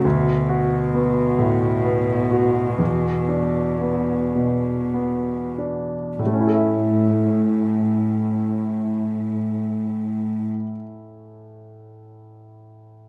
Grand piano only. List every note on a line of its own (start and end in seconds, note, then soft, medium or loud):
0.05 2.76 D2 soft
0.49 1.20 F#4 soft
0.94 1.66 B3 soft
1.39 2.12 A2 soft
1.84 2.60 B3 soft
2.31 2.80 F#4 soft
2.78 6.14 E2 soft
3.28 4.13 D4 soft
3.81 4.70 B3 soft
4.35 5.31 B2 soft
4.94 5.95 B3 soft
5.58 6.19 D4 soft
6.19 10.48 A2 soft
6.26 10.55 A3 soft
6.33 10.62 C#4 soft
6.40 10.69 E4 soft
6.47 10.76 A4 soft
6.54 10.83 E5 soft